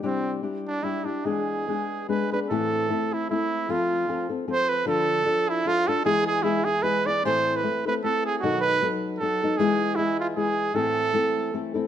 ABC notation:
X:1
M:3/4
L:1/16
Q:"Swing" 1/4=152
K:Ephr
V:1 name="Trumpet"
C3- C/2 z2 z/2 D2 E2 D2 | ^G8 B2 B2 | [K:Am] A6 E2 E4 | F6 z2 c2 B2 |
A6 E2 F2 A2 | ^G2 G2 E2 G2 B2 d2 | c3 B3 B2 A2 ^G3/2 G/2 | ^F2 B3- B/2 z2 z/2 A4 |
^G4 E2 F2 G4 | A8- A2 z2 |]
V:2 name="Nylon-string guitar"
[C,G,DEG]4 [G,DEG]4 [G,DEG]2 [DEG]2 | [E,^G,B,D^G]4 [G,B,DG]4 [G,B,DG]2 [B,DG]2 | [K:Am] [A,,E,A,CEA]4 [A,CEA]4 [A,CEA]4 | [F,CFA]4 [F,CFA]2 [CFA]2 [F,CFA]4 |
[D,F,DFA]4 [F,DFA]4 [F,DFA]2 [DFA]2 | [E,^G,B,E^G]4 [G,B,EG]2 [B,E]2 [G,B,EG]2 [B,EG]2 | [A,,E,A,CEA]4 [A,CEA]2 [A,CEA]2 [A,CEA]4 | [B,,^D,^F,B,^DA]4 [F,B,DA]4 [F,B,DA]2 [F,B,DA]2 |
[E,^G,B,E^G]4 [G,B,EG]4 [G,B,EG]4 | [A,,E,A,CEA]4 [A,CEA]4 [A,CEA]2 [A,CEA]2 |]